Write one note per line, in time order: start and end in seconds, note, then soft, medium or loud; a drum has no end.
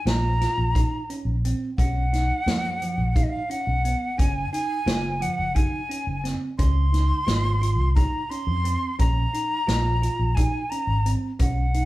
0.05 0.45 A#1 medium
0.05 0.31 F4 medium
0.05 1.10 A#5 medium
0.05 snare medium
0.05 closed hi-hat medium
0.41 0.66 F4 medium
0.41 snare soft
0.41 closed hi-hat soft
0.58 0.84 A#1 medium
0.75 1.00 D#4 medium
0.75 kick medium
0.75 closed hi-hat medium
1.10 1.35 C#4 medium
1.10 closed hi-hat soft
1.25 1.51 A#1 medium
1.45 1.69 C4 medium
1.45 closed hi-hat medium
1.77 2.30 B1 medium
1.77 2.04 C#4 medium
1.77 3.17 F#5 medium
1.77 kick medium
1.77 closed hi-hat medium
2.13 2.38 D#4 medium
2.13 snare soft
2.13 closed hi-hat soft
2.46 2.99 F#2 medium
2.46 2.72 F3 medium
2.46 snare medium
2.46 closed hi-hat medium
2.82 3.06 F3 medium
2.82 closed hi-hat soft
2.98 3.24 A#1 medium
3.15 3.40 D#4 medium
3.15 3.25 F5 medium
3.15 kick medium
3.15 closed hi-hat medium
3.23 3.31 D#5 medium
3.29 3.52 F5 medium
3.50 3.75 C#4 medium
3.50 4.19 F#5 medium
3.50 closed hi-hat medium
3.67 3.93 B1 medium
3.85 4.09 B3 medium
3.85 closed hi-hat medium
4.18 4.45 F#1 medium
4.18 4.43 C#4 medium
4.18 4.52 G#5 medium
4.18 kick medium
4.18 closed hi-hat medium
4.52 4.78 D#4 medium
4.52 5.23 G#5 medium
4.52 closed hi-hat medium
4.86 5.25 F#1 medium
4.86 5.12 F4 medium
4.86 snare medium
4.86 closed hi-hat medium
5.21 5.46 F3 medium
5.21 5.56 F#5 medium
5.21 closed hi-hat medium
5.39 5.65 F#1 medium
5.55 5.80 D#4 medium
5.55 6.32 G#5 medium
5.55 kick medium
5.55 closed hi-hat medium
5.89 6.14 C#4 medium
5.89 closed hi-hat medium
6.07 6.33 F#1 medium
6.24 6.49 C4 medium
6.24 snare soft
6.24 closed hi-hat medium
6.58 7.11 C#2 medium
6.58 6.84 C#4 medium
6.58 7.91 C6 medium
6.58 kick medium
6.58 closed hi-hat medium
6.93 7.18 D#4 medium
6.93 snare soft
6.93 closed hi-hat soft
7.27 7.79 G#1 medium
7.27 7.52 F4 medium
7.27 snare medium
7.27 closed hi-hat medium
7.62 7.87 F4 medium
7.62 closed hi-hat soft
7.79 8.05 C2 medium
7.95 8.21 D#4 medium
7.95 8.31 A#5 medium
7.95 kick medium
7.95 closed hi-hat medium
8.30 8.56 C#4 medium
8.30 8.99 C6 loud
8.30 closed hi-hat soft
8.47 8.73 F2 medium
8.65 8.90 C4 medium
8.65 closed hi-hat medium
8.99 9.25 A#1 medium
8.99 9.24 C#4 medium
8.99 10.36 A#5 medium
8.99 kick medium
8.99 closed hi-hat medium
9.33 9.58 D#4 medium
9.33 closed hi-hat medium
9.67 10.07 A#1 medium
9.67 9.92 F4 medium
9.67 snare medium
9.67 closed hi-hat medium
10.02 10.27 F4 medium
10.02 closed hi-hat medium
10.19 10.45 A#1 medium
10.35 10.62 D#4 medium
10.35 10.71 G#5 medium
10.35 kick medium
10.35 closed hi-hat medium
10.70 10.96 C#4 medium
10.70 11.12 A#5 medium
10.70 closed hi-hat medium
10.87 11.13 G#1 medium
11.06 11.30 C4 medium
11.06 closed hi-hat medium
11.39 11.85 B1 medium
11.39 11.64 C#4 medium
11.39 11.85 F#5 medium
11.39 kick medium
11.39 closed hi-hat medium
11.74 11.85 D#4 medium
11.74 closed hi-hat medium